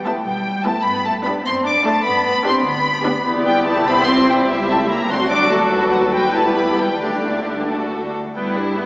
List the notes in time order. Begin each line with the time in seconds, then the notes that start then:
Already playing: E2
0.05 A3 B3 E4 G4 B4 A5
0.25 B1 G3 G5
0.65 A3 B3 E4 G4 B4 A5
0.84 G2 B3 B5
1.05 A3 A5
1.25 B3 D4 G4 D5 B5
1.45 F#2 C4 C6
1.66 D4 D6
1.86 A3 D4 A4 D5 A5
2.05 G2 B3 B5
2.26 B3 B5
2.45 B3 C4 D4 G4 D5 C6
2.65 D2 B3 B5
3.05 B3 D4 G4 D5
3.25 E2 B3 E4 G4 D5
3.46 G3 G5
3.66 A3 A5
3.87 C2 B3 C4 C5 B5
4.07 C4 C6
4.27 G3 G5
4.48 C#2 G3 E5
4.68 A3 A5
4.88 A#3 A#5
5.09 D2 F#3 C4 F#4 A4 D5 C6
5.29 D4 D6
5.49 A3 A5
5.70 D#2 B4
5.92 F#3 F#5
6.13 G3 G5
6.33 E2 G3 A3 E4 G4 A5
6.57 B3 B5
6.79 G3 G5
7.01 D2 D3 A3 D4 G4 D5
7.69 F#4 A4
8.34 G2 G3 B3 E4 B4 G5
8.56 D4 G4 D5
8.75 B3 B4 G5